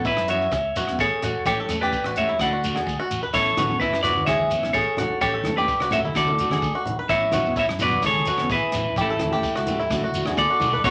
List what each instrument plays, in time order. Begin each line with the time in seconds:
Already playing: fingered electric bass A1
0.05 five-string banjo E4, clean electric guitar E4 B4, kick, shekere
0.17 fingered electric bass F#2, cross-stick
0.28 steel-string acoustic guitar E3 B3, five-string banjo F#4, clean electric guitar C#5 E5, closed hi-hat
0.33 steel-string acoustic guitar C#4
0.41 shekere
0.52 fingered electric bass C#2, muted five-string banjo stroke, kick, cross-stick, shekere
0.76 steel-string acoustic guitar E3 B3, five-string banjo F#4, closed hi-hat, shekere
0.80 steel-string acoustic guitar C#4
0.87 steel-string acoustic guitar C#4, cross-stick
0.92 steel-string acoustic guitar B3
0.99 fingered electric bass A1, five-string banjo G#4, clean electric guitar A4 C#5, kick, shekere
1.22 fingered electric bass A1, five-string banjo F#4, cross-stick, closed hi-hat, shekere
1.45 fingered electric bass A1, steel-string acoustic guitar E3 A3 C#4 G4, five-string banjo G4, clean electric guitar A4 C#5, kick, shekere
1.60 five-string banjo A4
1.69 fingered electric bass E2, steel-string acoustic guitar E3 A3 C#4, cross-stick, closed hi-hat, shekere
1.81 steel-string acoustic guitar A3 C#4 G4, five-string banjo G4, clean electric guitar B4 D5, shekere
1.93 kick, shekere
2.04 fingered electric bass A1, five-string banjo F#4, cross-stick
2.16 steel-string acoustic guitar E3 A3 C#4, clean electric guitar C#5 E5, closed hi-hat, shekere
2.20 steel-string acoustic guitar G4
2.29 five-string banjo E4
2.39 fingered electric bass D2, steel-string acoustic guitar A3 D4 F#4, clean electric guitar F#5, kick, cross-stick, shekere
2.43 clean electric guitar D5
2.53 five-string banjo F#4
2.63 steel-string acoustic guitar A3 D4 F#4, closed hi-hat, shekere
2.74 steel-string acoustic guitar D4 F#4, five-string banjo G#4, cross-stick, shekere
2.87 fingered electric bass D2, kick, shekere
3.00 five-string banjo F#4
3.11 fingered electric bass A1, closed hi-hat, shekere
3.23 five-string banjo B4, shekere
3.33 fingered electric bass A1, steel-string acoustic guitar E3 B3 C#4, five-string banjo E4, clean electric guitar A4 C#5, kick, shekere
3.57 fingered electric bass A1, steel-string acoustic guitar E3 B3 C#4, five-string banjo F#4, cross-stick, closed hi-hat, high conga, low conga, shekere
3.70 steel-string acoustic guitar B3 C#4, shekere
3.80 clean electric guitar E4 B4, five-string banjo E4, kick, shekere
3.93 fingered electric bass F#2, cross-stick
4.03 steel-string acoustic guitar E3 B3 C#4, five-string banjo F#4, clean electric guitar B4 D5, closed hi-hat, low conga, shekere
4.16 high conga, shekere
4.26 fingered electric bass C#2, five-string banjo G#4, clean electric guitar C#5 E5, kick, cross-stick, high conga, shekere
4.39 high conga
4.51 steel-string acoustic guitar E3 B3 C#4, closed hi-hat, shekere
4.63 steel-string acoustic guitar B3 C#4, cross-stick, high conga
4.73 fingered electric bass A1, five-string banjo G#4, clean electric guitar A4 C#5, kick, shekere
4.97 fingered electric bass A1, five-string banjo F#4, cross-stick, closed hi-hat, low conga
5.21 fingered electric bass A1, steel-string acoustic guitar E3 C#4 G4, five-string banjo G4, clean electric guitar A4 C#5, muted steel-string acoustic guitar stroke, kick, shekere
5.34 five-string banjo A4
5.44 fingered electric bass E2, steel-string acoustic guitar E3 A3 C#4 G4, cross-stick, closed hi-hat, high conga, low conga
5.56 steel-string acoustic guitar A3 C#4 G4, five-string banjo G4, clean electric guitar B4 D5, shekere
5.68 kick, shekere
5.80 fingered electric bass C#2, five-string banjo F#4, cross-stick
5.91 steel-string acoustic guitar A3 C#4 G4, clean electric guitar C#5 E5, closed hi-hat, low conga, shekere
6.04 five-string banjo E4, high conga, shekere
6.13 fingered electric bass D2, steel-string acoustic guitar A3 D4 F#4, clean electric guitar A4 D5, kick, cross-stick, high conga, shekere
6.27 muted five-string banjo stroke, high conga
6.37 steel-string acoustic guitar A3 D4 F#4, closed hi-hat, shekere
6.50 steel-string acoustic guitar D4 F#4, five-string banjo G#4, cross-stick, high conga
6.62 fingered electric bass D2, kick, shekere
6.75 five-string banjo F#4
6.86 fingered electric bass A1, closed hi-hat, low conga
6.99 five-string banjo B4
7.09 fingered electric bass A1, steel-string acoustic guitar E3 B3 C#4, five-string banjo E4, clean electric guitar C#5 E5, kick, shekere
7.31 fingered electric bass A1, steel-string acoustic guitar E3 B3 C#4, five-string banjo F#4, cross-stick, closed hi-hat, high conga, low conga, shekere
7.43 steel-string acoustic guitar B3 C#4, shekere
7.56 five-string banjo E4, clean electric guitar C#5 E5, kick, shekere
7.69 fingered electric bass F#2, cross-stick
7.78 steel-string acoustic guitar E3 B3 C#4, five-string banjo F#4, clean electric guitar D5, closed hi-hat, low conga, shekere
7.83 clean electric guitar B4
7.92 high conga, shekere
8.02 fingered electric bass C#2, five-string banjo G#4, clean electric guitar A4, kick, cross-stick, high conga, shekere
8.07 clean electric guitar C#5
8.15 high conga
8.25 steel-string acoustic guitar E3 B3, five-string banjo F#4, closed hi-hat, shekere
8.38 steel-string acoustic guitar C#4, cross-stick, high conga
8.42 steel-string acoustic guitar B3
8.50 fingered electric bass A1, clean electric guitar E4 B4, five-string banjo G#4, kick, shekere
8.72 fingered electric bass A1, cross-stick, closed hi-hat, low conga, shekere
8.96 fingered electric bass A1, steel-string acoustic guitar E3 A3 C#4 G4, five-string banjo G4, kick, low conga, shekere
9.01 clean electric guitar E4 A4
9.10 five-string banjo A4
9.18 fingered electric bass E2, steel-string acoustic guitar E3 A3 C#4, muted steel-string acoustic guitar stroke, cross-stick, closed hi-hat, high conga, low conga
9.31 steel-string acoustic guitar A3 C#4 G4, five-string banjo G4, shekere
9.43 kick, shekere
9.56 fingered electric bass C#2, five-string banjo F#4, cross-stick
9.66 steel-string acoustic guitar E3 A3 C#4 G4, closed hi-hat, low conga, shekere
9.80 five-string banjo E4, shekere
9.90 fingered electric bass D2, steel-string acoustic guitar A3 D4 F#4, kick, cross-stick, shekere
10.02 five-string banjo F#4, high conga
10.14 steel-string acoustic guitar A3 D4 F#4, closed hi-hat, shekere
10.25 steel-string acoustic guitar F#4, five-string banjo G#4, cross-stick, high conga, shekere
10.29 steel-string acoustic guitar D4
10.37 fingered electric bass D2, clean electric guitar A4 D5, kick, high tom, shekere
10.50 five-string banjo F#4
10.60 fingered electric bass B1, mid tom, low conga, shekere
10.73 five-string banjo B4, floor tom, shekere
10.84 fingered electric bass A1, steel-string acoustic guitar E3 B3 C#4, five-string banjo F#4, clean electric guitar A4 C#5, kick, shekere